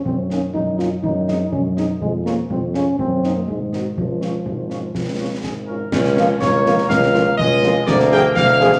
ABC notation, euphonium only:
X:1
M:2/4
L:1/16
Q:1/4=123
K:Db
V:1 name="Euphonium"
C2 D2 E2 F2 | E4 D2 E2 | A,2 B,2 C2 D2 | C3 B, A,2 E,2 |
F,8- | F,4 z4 | [K:Bbdor] z8 | z8 |
z8 |]